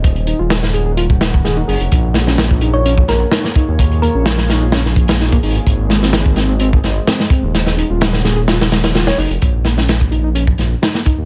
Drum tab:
HH |xxx-x-x-x-x-x-ox|x-x-x-x-x-x-x-x-|xxx-x-x-x-xx-xox|x-x-x-x-x-x-x-x-|
SD |----oo----o-o---|--ooo-----o-oo--|----ooo-oo-oo---|--ooo-o---o-oo--|
BD |o--------o-o----|o----o---o----o-|o---------o--o--|o----o---o----o-|

HH |x-x-x-x-xxxxxxox|x-x-x-x-x-x-x-x-|
SD |oo--ooo-oooooo--|--ooo-----o-oo--|
BD |----------------|o----o---o----o-|